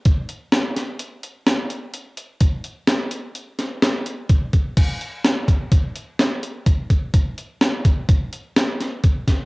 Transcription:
\new DrumStaff \with { instrumentName = "Drums" } \drummode { \time 5/4 \tempo 4 = 127 <hh bd>8 hh8 <hh sn>8 <hh sn>8 hh8 hh8 <hh sn>8 hh8 hh8 hh8 | <hh bd>8 hh8 <hh sn>8 hh8 hh8 <hh sn>8 <hh sn>8 hh8 <hh bd>8 <hh bd>8 | <cymc hh bd>8 hh8 <hh sn>8 <hh bd>8 <hh bd>8 hh8 <hh sn>8 hh8 <hh bd>8 <hh bd>8 | <hh bd>8 hh8 <hh sn>8 <hh bd>8 <hh bd>8 hh8 <hh sn>8 <hh sn>8 <hh bd>8 <hh bd sn>8 | }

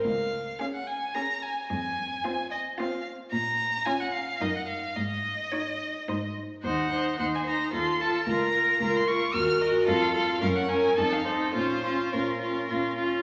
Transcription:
<<
  \new Staff \with { instrumentName = "Violin" } { \time 3/4 \key des \major \tempo 4 = 109 f''4 f''16 ges''16 aes''8 bes''8 aes''8 | aes''4. ees''8 f''8 r8 | bes''4 aes''16 ges''16 f''8 ees''16 ges''16 f''8 | ees''2~ ees''8 r8 |
\key bes \minor ges''4 ges''16 aes''16 bes''8 c'''8 a''8 | bes''4 bes''16 c'''16 des'''8 f'''8 ees''8 | f''4 f''16 ges''16 aes''8 a''16 f''16 c''8 | c''4 bes'4. r8 | }
  \new Staff \with { instrumentName = "Violin" } { \time 3/4 \key des \major r4 aes'4 aes'4 | r4 f'4 f'4 | r4 f'4 bes'4 | r4 des''4 c''4 |
\key bes \minor c''8 c''8 c''8 c''8 a'8 a'8 | bes'8 bes'8 bes'8 bes'8 bes'8 bes'8 | a'8 a'8 bes'8 bes'8 a'8 a'8 | f'8 f'8 f'8 f'8 f'8 f'8 | }
  \new Staff \with { instrumentName = "Viola" } { \time 3/4 \key des \major r4 des'4 des'4 | r4 c'4 c'4 | r4 des'4 ees'4 | r4 ees'4 ees'4 |
\key bes \minor ees'8 ees'8 ees'8 ees'8 f'8 f'8 | f'8 f'8 f'8 f'8 ges'8 ges'8 | f'8 f'8 des'8 des'8 ees'8 ees'8 | des'8 des'8 des'8 des'8 des'8 des'8 | }
  \new Staff \with { instrumentName = "Cello" } { \clef bass \time 3/4 \key des \major des,4 r2 | f,4 r2 | bes,4 r4 ges,4 | aes,4 r4 aes,4 |
\key bes \minor ees,4 ees,4 ees,4 | des,4 des,4 ees,4 | f,4 ges,4 f,4 | bes,4 bes,4 bes,4 | }
>>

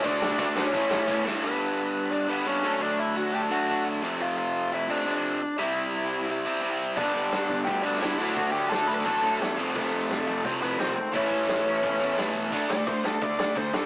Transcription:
<<
  \new Staff \with { instrumentName = "Lead electric guitar" } { \time 4/4 \key g \lydian \tempo 4 = 173 <d' d''>4 <d' d''>8 <cis' cis''>2 r8 | <b b'>2 <d' d''>8 <b b'>8 <cis' cis''>4 | <d' d''>8 <e' e''>8 <fis' fis''>8 <g' g''>8 <fis' fis''>4 r4 | <f' f''>8 <f' f''>4 <e' e''>8 <d' d''>2 |
<e' e''>2 r2 | <d' d''>2 <g' g''>8 <d' d''>8 <e' e''>4 | <fis' fis''>8 <g' g''>8 <a' a''>8 <b' b''>8 <a' a''>4 r4 | <a a'>2 <c' c''>8 <b b'>8 <c' c''>4 |
<cis' cis''>2. r4 | r8 d''8 c''8 a'8 d''8 d''8 c''8 a'8 | }
  \new Staff \with { instrumentName = "Overdriven electric guitar" } { \time 4/4 \key g \lydian <d a d' fis'>8 <d a d' fis'>8 <d a d' fis'>8 <d a d' fis'>8 <a, e a cis' e'>8 <a, e a cis' e'>8 <a, e a cis' e'>8 <a, e a cis' e'>8 | <g, d g b d'>2 <g, d g b d'>4. <d fis a d'>8~ | <d fis a d'>4. <d fis a d'>2 <f, c f a c'>8~ | <f, c f a c'>4. <f, c f a c'>2 r8 |
<c g c' e'>2 <c g c' e'>2 | <g, d g b d'>2 <g, d g b d'>4. <d fis a d'>8~ | <d fis a d'>4. <d fis a d'>2 <f a c' f'>8~ | <f a c' f'>4. <f a c' f'>2 r8 |
<a, e a cis' e'>2 <a, e a cis' e'>2 | <d a d'>8 <d a>8 <d a>8 <d a>8 <d a>8 <d a>8 <d a>8 <d a>8 | }
  \new Staff \with { instrumentName = "Overdriven electric guitar" } { \time 4/4 \key g \lydian <d a d'>8 <d a d'>8 <d a d'>8 <d a d'>8 <a, e a>8 <a, e a>8 <a, e a>8 <a, e a>8 | r1 | r1 | r1 |
r1 | <g, d g>2.~ <g, d g>8 <d a d'>8~ | <d a d'>2.~ <d a d'>8 <f, c f>8~ | <f, c f>2.~ <f, c f>8 r8 |
<a, e a>1 | <d a d'>8 <d a d'>8 <d a d'>8 <d a d'>8 <d a d'>8 <d a d'>8 <d a d'>8 <d a d'>8 | }
  \new Staff \with { instrumentName = "Overdriven electric guitar" } { \clef bass \time 4/4 \key g \lydian <d a d'>8 <d a d'>8 <d a d'>8 <d a d'>8 <a, e a>8 <a, e a>8 <a, e a>8 <a, e a>8 | <g, d g>2~ <g, d g>8 <g, d g>8 <g, d g>8 <d a d'>8~ | <d a d'>2 <d a d'>8 <d a d'>4 <f, c f>8~ | <f, c f>2 <f, c f>8 <f, c f>4 r8 |
<c g c'>2~ <c g c'>8 <c g c'>8 <c g c'>4 | <g, d g>2~ <g, d g>8 <g, d g>8 <g, d g>8 <d a d'>8~ | <d a d'>2 <d a d'>8 <d a d'>4 <f, c f>8~ | <f, c f>2 <f, c f>8 <f, c f>4 r8 |
<a, e a>2~ <a, e a>8 <a, e a>8 <a, e a>4 | <d a d'>8 <d a>8 <d a>8 <d a>8 <d a>8 <d a>8 <d a>8 <d a>8 | }
  \new Staff \with { instrumentName = "Picked electric bass" } { \clef bass \time 4/4 \key g \lydian d,4 d,8 d,8 a,,4 e,8 g,8 | r1 | r1 | r1 |
r1 | g,,8 g,,8 g,,8 g,,8 d,8 d,8 d,8 d,8 | d,8 d,8 d,8 d,8 a,,8 a,8 e,8 f,,8 | f,,8 f,,8 f,,8 f,,8 c,8 c,8 c,8 gis,,8 |
a,,8 a,,8 a,,8 a,,8 e,,8 e,8 e,8 e,,8 | d,8 d,8 d,8 d,8 d,8 d,8 d,8 d,8 | }
  \new DrumStaff \with { instrumentName = "Drums" } \drummode { \time 4/4 <bd cymr>8 sn16 bd16 <bd cymr>8 sn8 <bd cymr>8 sn8 <bd cymr>8 sn8 | r4 r4 r4 r4 | r4 r4 r4 r4 | r4 r4 r4 r4 |
r4 r4 r4 r4 | <cymc bd>4 <hho sn>8 bd8 <hho bd>4 <hho sn>4 | <hho bd>4 <hho sn>4 <hho bd>4 <hho sn>4 | <cymc bd>4 <hho sn>8 bd8 <hho bd>4 <hho sn>4 |
<hho bd>4 <hho sn>4 <hho bd>4 <hho sn>4 | <cymc bd>8 sn8 <cymc bd>8 sn8 <cymc bd>8 sn8 <cymc bd>8 sn8 | }
>>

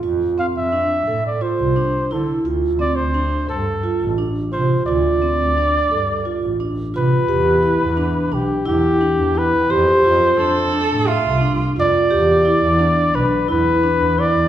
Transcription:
<<
  \new Staff \with { instrumentName = "Flugelhorn" } { \time 7/8 \key e \phrygian \tempo 4 = 87 r8 f''16 e''4 d''16 c''4 a'8 | r8 d''16 c''8. a'4 r8 c''8 | d''2~ d''8 r8 b'8~ | b'4. g'8 g'4 b'8 |
c''4. r4. d''8~ | d''4. b'8 b'4 d''8 | }
  \new Staff \with { instrumentName = "Cello" } { \time 7/8 \key e \phrygian r2. r8 | r2. r8 | r2. r8 | r2. r8 |
r4 a'4 f'8. r8. | r2. r8 | }
  \new Staff \with { instrumentName = "Vibraphone" } { \time 7/8 \key e \phrygian f'8 c'8 d'8 a'8 f'8 d'8 e'8 | f'8 c'8 d'8 a'8 f'8 d'8 f'8 | f'8 c'8 d'8 a'8 f'8 d'8 f'8 | g'8 e'8 d'8 d'8 e'8 d'8 e'8 |
g'8 f'8 d'8 d'8 e''8 d'8 f'8 | g'8 e'8 d'8 d'8 e'8 d'8 e'8 | }
  \new Staff \with { instrumentName = "Double bass" } { \clef bass \time 7/8 \key e \phrygian f,8 r16 f,8. a,8 r16 c,8 r16 d8 | d,8 r16 d,8. g,8 r16 a,,8 r16 c8 | d,8 r16 d,8. g,8 r16 a,,8 r16 c8 | e,8. e,8. b,,16 r16 e,8 r16 e,16 r16 e,16 |
f,8 f,8 f,8 r16 a,8 c,8 r16 f,16 r16 | e,8. e,8. b,,16 r16 e,8 r16 e,16 r16 e,16 | }
>>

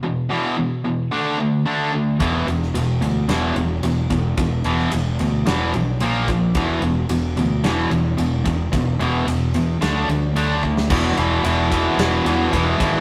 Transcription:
<<
  \new Staff \with { instrumentName = "Tonewheel organ" } { \time 4/4 \key d \lydian \tempo 4 = 110 r1 | r1 | r1 | r1 |
r1 | <e b fis'>1 | }
  \new Staff \with { instrumentName = "Distorted electric guitar" } { \clef bass \time 4/4 \key d \lydian <e, b,>8 <e, b, e>8 <e, b,>8 <e, b,>8 <d a d'>8 <d a>8 <d a d'>8 <d a>8 | <e, b, e>8 <e, b,>8 <e, b,>8 <e, b,>8 <e, b, e>8 <e, b,>8 <e, b,>8 <e, b,>8 | <e, b,>8 <e, b, e>8 <e, b,>8 <e, b,>8 <e, b, e>8 <e, b,>8 <ais, eis ais>8 <ais, eis>8 | <e, b, e>8 <e, b,>8 <e, b,>8 <e, b,>8 <e, b, e>8 <e, b,>8 <e, b,>8 <e, b,>8 |
<e, b,>8 <e, b, e>8 <e, b,>8 <e, b,>8 <d a d'>8 <d a>8 <d a d'>8 <d a>8 | <e, b, e>8 <e, b, e>8 <e, b, e>8 <e, b, e>8 <e, b, e>8 <e, b, e>8 <e, b, e>8 <e, b, e>8 | }
  \new Staff \with { instrumentName = "Distorted electric guitar" } { \clef bass \time 4/4 \key d \lydian <e, b,>8 <e, b, e>8 <e, b,>8 <e, b,>8 <d a d'>8 <d a>8 <d a d'>8 <d a>8 | <e, b, e>8 <e, b,>8 <e, b,>8 <e, b,>8 <e, b, e>8 <e, b,>8 <e, b,>8 <e, b,>8 | <e, b,>8 <e, b, e>8 <e, b,>8 <e, b,>8 <e, b, e>8 <e, b,>8 <ais, eis ais>8 <ais, eis>8 | <e, b, e>8 <e, b,>8 <e, b,>8 <e, b,>8 <e, b, e>8 <e, b,>8 <e, b,>8 <e, b,>8 |
<e, b,>8 <e, b, e>8 <e, b,>8 <e, b,>8 <d a d'>8 <d a>8 <d a d'>8 <d a>8 | <e, b, e>8 <e, b, e>8 <e, b, e>8 <e, b, e>8 <e, b, e>8 <e, b, e>8 <e, b, e>8 <e, b, e>8 | }
  \new Staff \with { instrumentName = "Fingered electric bass" } { \clef bass \time 4/4 \key d \lydian r1 | e,,8 e,,8 e,,8 d,8 e,,8 e,,8 e,,8 e,,8 | e,,8 e,,8 e,,8 d,8 e,,8 b,,8 ais,,4 | e,,8 e,,8 e,,8 d,8 e,,8 e,,8 e,,8 e,,8 |
e,,8 e,,8 e,,8 e,8 d,8 d,8 d,4 | e,,8 e,,8 e,,4 e,,8 e,8 e,,8 gis,,8 | }
  \new DrumStaff \with { instrumentName = "Drums" } \drummode { \time 4/4 r4 r4 r4 r4 | <bd cymr>8 cymr16 sn16 cymr8 cymr8 <cymr sn>8 cymr8 cymr8 <bd cymr>8 | <bd cymr>8 cymr16 sn16 cymr8 cymr8 <cymr sn>8 cymr8 cymr8 <bd cymr>8 | <bd cymr>8 cymr8 cymr8 cymr8 <cymr sn>8 cymr8 cymr8 <bd cymr>8 |
<bd cymr>8 cymr8 cymr8 cymr8 <cymr sn>8 cymr8 cymr8 bd16 sn16 | <cymc bd>8 cymr8 cymr8 <bd cymr>8 <cymr sn>8 cymr8 <bd cymr>8 <bd cymr sn>8 | }
>>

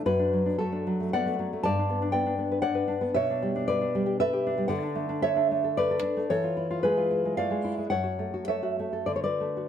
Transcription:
\new Staff \with { instrumentName = "Nylon-string guitar" } { \time 3/4 \key g \lydian \tempo 4 = 112 << { <fis' b'>4 <fis' a'>4 <d'' fis''>4 | <d'' a''>4 <d'' g''>4 <d'' fis''>4 | <cis'' e''>4 <b' d''>4 <b' e''>4 | \key e \mixolydian <d'' fis''>4 <cis'' e''>4 <b' d''>4 |
<a' cis''>4 <gis' b'>4 <d'' f''>4 | <cis'' fis''>4 <cis'' e''>4 d''32 cis''32 <b' d''>8. | } \\ { fis,16 d'16 fis16 d'16 a16 d'16 fis16 a16 b16 a16 fis16 a16 | g,16 d'16 b16 d'16 b16 d'16 b16 b'16 cis''16 b'16 d'16 b16 | b,16 d'16 g16 d'16 g16 d'16 g16 g'16 a'16 g'16 d'16 g16 | d16 d'16 a16 d'16 a16 d'16 a16 a'8 a'16 d'16 a16 |
e16 f'16 e'16 f'16 gis16 f'16 e'16 gis16 a16 gis16 e'16 gis16 | fis,16 fis'16 a16 fis'16 a16 fis'16 a16 a'16 d16 fis'16 a16 fis'16 | } >> }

